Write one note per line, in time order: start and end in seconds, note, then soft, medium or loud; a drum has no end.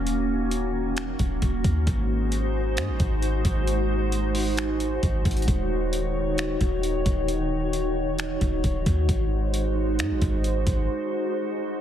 0.00 1.15 D#1 loud
0.00 1.83 D#3 medium
0.00 1.83 A#3 medium
0.00 1.83 C#4 medium
0.00 9.05 F#4 medium
0.07 closed hi-hat medium
0.51 closed hi-hat medium
0.97 finger snap loud
0.97 closed hi-hat medium
1.19 1.41 D#1 loud
1.19 kick loud
1.19 closed hi-hat medium
1.42 1.64 D#1 loud
1.42 kick medium
1.42 closed hi-hat medium
1.64 1.86 D#2 loud
1.64 kick loud
1.64 closed hi-hat medium
1.87 2.79 G#1 loud
1.87 5.44 G#3 medium
1.87 11.81 D#4 medium
1.87 5.44 C5 medium
1.87 kick loud
1.87 closed hi-hat medium
2.32 closed hi-hat medium
2.77 2.90 G#2 loud
2.77 finger snap loud
2.77 closed hi-hat medium
2.88 2.99 G#1 loud
3.00 3.43 G#1 loud
3.00 kick loud
3.00 closed hi-hat medium
3.22 closed hi-hat medium
3.45 4.99 G#1 loud
3.45 kick loud
3.45 closed hi-hat medium
3.67 closed hi-hat medium
4.12 closed hi-hat medium
4.35 open hi-hat medium
4.57 finger snap loud
4.57 closed hi-hat medium
4.80 closed hi-hat medium
5.03 5.25 G#1 loud
5.03 kick medium
5.03 closed hi-hat medium
5.25 5.47 G#1 loud
5.25 kick loud
5.25 closed hi-hat medium
5.31 closed hi-hat medium
5.37 closed hi-hat medium
5.42 closed hi-hat medium
5.48 6.57 D#1 loud
5.48 9.05 D#3 medium
5.48 9.05 C#5 medium
5.48 kick loud
5.48 closed hi-hat medium
5.93 closed hi-hat medium
6.38 finger snap loud
6.38 closed hi-hat medium
6.61 7.04 D#1 loud
6.61 kick loud
6.61 closed hi-hat medium
6.83 closed hi-hat medium
7.06 8.37 D#1 loud
7.06 kick loud
7.06 closed hi-hat medium
7.28 closed hi-hat medium
7.73 closed hi-hat medium
8.19 finger snap loud
8.19 closed hi-hat medium
8.41 8.63 D#1 loud
8.41 kick loud
8.41 closed hi-hat medium
8.64 8.86 D#1 loud
8.64 kick medium
8.64 closed hi-hat medium
8.86 9.08 D#2 loud
8.86 kick loud
8.86 closed hi-hat medium
9.09 10.01 G#1 loud
9.09 11.81 G#3 medium
9.09 11.81 F#4 medium
9.09 11.81 C5 medium
9.09 kick loud
9.09 closed hi-hat medium
9.54 closed hi-hat medium
9.99 10.12 G#2 loud
9.99 finger snap loud
9.99 closed hi-hat medium
10.10 10.21 G#1 loud
10.22 10.65 G#1 loud
10.22 kick loud
10.22 closed hi-hat medium
10.44 closed hi-hat medium
10.67 10.88 G#1 loud
10.67 kick loud
10.67 closed hi-hat medium